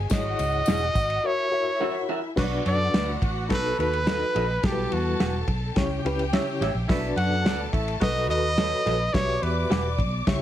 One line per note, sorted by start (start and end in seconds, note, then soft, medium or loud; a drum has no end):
0.10 0.32 G#1 loud
0.10 0.92 G#2 medium
0.10 0.84 E4 medium
0.10 1.22 F#4 medium
0.10 0.84 G#4 medium
0.10 0.84 C#5 medium
0.10 0.85 D#5 medium
0.10 1.28 D#5 loud
0.10 1.22 F#5 medium
0.10 kick loud
0.10 snare loud
0.10 ride medium
0.10 tambourine medium
0.39 0.61 C#2 loud
0.39 ride medium
0.39 tambourine medium
0.66 0.89 E1 medium
0.66 0.80 E4 medium
0.66 0.80 G#4 medium
0.66 0.80 D#5 medium
0.66 snare loud
0.66 ride medium
0.66 tambourine loud
0.95 1.17 G#1 medium
0.95 kick medium
0.95 ride medium
0.95 tambourine medium
1.10 ride medium
1.24 2.35 E4 medium
1.24 1.47 F#4 medium
1.24 1.47 A#4 medium
1.24 1.47 C#5 medium
1.24 2.10 C#5 loud
1.24 2.35 E5 medium
1.24 1.47 E5 medium
1.51 1.70 F#4 medium
1.51 1.71 A#4 medium
1.51 1.71 C#5 medium
1.51 1.71 E5 medium
1.79 2.16 F#4 medium
1.79 1.93 F#4 medium
1.79 2.17 A#4 medium
1.79 1.93 A#4 medium
1.79 2.17 C#5 medium
1.79 1.93 E5 loud
1.79 2.17 F#5 medium
2.09 2.18 F#4 medium
2.09 2.19 A#4 medium
2.09 2.19 E5 medium
2.36 2.59 B1 loud
2.36 3.18 B2 medium
2.36 2.60 B3 loud
2.36 3.10 D4 medium
2.36 2.60 D4 loud
2.36 3.10 F#4 medium
2.36 2.60 F#4 loud
2.36 3.48 F#4 medium
2.36 3.10 B4 medium
2.36 2.44 C#5 medium
2.36 3.49 F#5 loud
2.36 kick loud
2.36 snare loud
2.36 crash loud
2.43 3.14 D5 loud
2.65 2.87 F#2 medium
2.65 2.88 D4 medium
2.65 2.88 F#4 medium
2.65 2.88 A4 loud
2.65 3.19 D5 loud
2.65 ride medium
2.94 3.15 D2 loud
2.94 3.17 A3 medium
2.94 3.17 C#4 medium
2.94 3.17 E4 medium
2.94 3.06 F#4 medium
2.94 3.06 B4 medium
2.94 3.06 D5 medium
2.94 snare loud
2.94 ride medium
3.22 3.50 A1 medium
3.22 3.45 B3 medium
3.22 3.45 D4 medium
3.22 3.45 F#4 loud
3.22 kick medium
3.22 ride medium
3.49 3.72 B1 loud
3.49 4.31 B2 medium
3.49 3.72 D#4 medium
3.49 4.03 D#4 loud
3.49 3.73 F#4 medium
3.49 4.03 F#4 loud
3.49 4.03 A4 loud
3.49 3.73 A4 medium
3.49 4.61 B4 medium
3.49 3.73 B4 medium
3.49 4.61 B5 medium
3.49 kick medium
3.49 snare loud
3.49 ride medium
3.54 3.78 B4 loud
3.78 4.21 D#2 medium
3.78 3.97 D#4 medium
3.78 3.97 F#4 medium
3.78 3.97 A4 medium
3.78 3.98 B4 medium
3.78 4.67 B4 loud
3.78 ride medium
3.93 ride soft
4.07 4.43 D#4 medium
4.07 4.19 F#4 medium
4.07 4.44 F#4 medium
4.07 4.19 A4 medium
4.07 4.44 A4 medium
4.07 4.44 B4 medium
4.07 4.19 D#5 medium
4.07 snare loud
4.07 ride medium
4.35 4.57 A#1 loud
4.35 4.44 F#4 medium
4.35 4.45 A4 medium
4.35 4.45 D#5 medium
4.35 ride medium
4.63 4.85 B1 loud
4.63 5.45 B2 medium
4.63 5.37 G3 medium
4.63 5.37 E4 medium
4.63 5.37 F#4 medium
4.63 4.94 G4 medium
4.63 5.75 A4 medium
4.63 4.71 A#4 medium
4.63 5.75 A5 medium
4.63 kick loud
4.63 snare loud
4.63 ride medium
4.72 5.41 B4 medium
4.92 5.13 E2 medium
4.92 5.49 F#4 medium
4.92 ride medium
5.20 5.42 E1 medium
5.20 5.32 G4 medium
5.20 5.32 B4 medium
5.20 5.32 F#5 loud
5.20 snare loud
5.20 ride medium
5.47 5.69 B1 medium
5.47 kick medium
5.47 ride medium
5.76 5.98 C#2 loud
5.76 6.57 C#3 medium
5.76 5.99 C#4 loud
5.76 5.99 E4 medium
5.76 6.87 G4 medium
5.76 5.99 G4 medium
5.76 6.00 C#5 loud
5.76 6.87 G5 loud
5.76 kick loud
5.76 snare loud
5.76 ride medium
6.05 6.37 C#2 medium
6.05 6.23 C#4 medium
6.05 6.23 E4 medium
6.05 6.23 G4 medium
6.05 6.24 B4 loud
6.05 ride medium
6.19 ride soft
6.32 6.69 C#4 medium
6.32 6.69 E4 medium
6.32 6.45 G4 medium
6.32 6.70 G4 medium
6.32 6.45 C#5 loud
6.32 6.70 C#5 loud
6.32 6.45 E5 loud
6.32 snare loud
6.32 ride medium
6.61 6.71 A1 medium
6.61 6.70 G4 medium
6.61 6.71 C#5 medium
6.61 6.71 E5 medium
6.61 snare soft
6.61 ride medium
6.75 6.86 A#1 medium
6.88 7.70 B2 medium
6.88 7.11 A3 loud
6.88 7.11 C#4 loud
6.88 7.62 D4 medium
6.88 7.11 E4 loud
6.88 7.62 F#4 medium
6.88 8.00 A4 medium
6.88 7.63 B4 medium
6.88 7.63 D5 medium
6.88 8.00 A5 medium
6.88 kick loud
6.88 snare loud
6.88 ride medium
7.16 7.44 F#2 loud
7.16 7.40 B3 medium
7.16 7.40 D4 medium
7.16 7.40 F#4 loud
7.16 7.70 F#5 loud
7.16 ride medium
7.44 7.66 D2 medium
7.44 7.68 F#3 medium
7.44 7.68 B3 medium
7.44 7.68 D4 loud
7.44 7.58 F#4 medium
7.44 7.58 B4 medium
7.44 7.58 D5 medium
7.44 snare loud
7.44 ride medium
7.72 7.95 A1 loud
7.72 7.96 A3 medium
7.72 7.95 C#4 medium
7.72 7.96 E4 loud
7.72 kick medium
7.72 ride medium
7.88 ride soft
8.01 8.29 B1 loud
8.01 8.83 B2 medium
8.01 8.54 B3 loud
8.01 8.54 D#4 loud
8.01 8.54 F#4 loud
8.01 8.24 F#4 medium
8.01 8.25 A4 medium
8.01 9.12 B4 medium
8.01 8.25 B4 medium
8.01 8.29 D#5 loud
8.01 8.25 D#5 medium
8.01 9.12 B5 loud
8.01 kick medium
8.01 snare loud
8.01 ride medium
8.29 8.72 D#2 loud
8.29 8.48 F#4 medium
8.29 8.48 A4 medium
8.29 8.48 B4 medium
8.29 9.15 D#5 loud
8.29 8.49 D#5 medium
8.29 ride medium
8.58 8.70 F#4 medium
8.58 8.95 F#4 medium
8.58 8.70 A4 medium
8.58 8.95 A4 medium
8.58 8.95 B4 medium
8.58 8.96 C#5 medium
8.58 8.70 D#5 medium
8.58 snare loud
8.58 ride medium
8.86 9.08 A#1 medium
8.86 8.95 F#4 medium
8.86 8.96 A4 medium
8.86 8.96 D#5 medium
8.86 snare soft
8.86 ride medium
9.13 9.36 B1 loud
9.13 9.95 B2 medium
9.13 9.87 F#4 medium
9.13 9.87 G4 medium
9.13 9.87 B4 medium
9.13 9.44 C#5 loud
9.13 10.25 D5 medium
9.13 9.88 E5 medium
9.13 10.25 D6 loud
9.13 kick loud
9.13 snare loud
9.13 ride medium
9.42 9.64 E2 medium
9.42 9.99 B4 medium
9.42 ride medium
9.70 10.00 E1 loud
9.70 9.82 G4 medium
9.70 9.83 B4 medium
9.70 9.83 F#5 medium
9.70 snare loud
9.70 ride medium
9.99 10.20 B1 medium
9.99 kick medium
9.99 ride medium
10.27 10.42 C#2 loud
10.27 10.42 C#3 medium
10.27 10.42 E4 medium
10.27 10.42 G4 medium
10.27 10.42 C#5 medium
10.27 10.42 E5 loud
10.27 10.42 C#6 medium
10.27 kick medium
10.27 snare loud
10.27 ride medium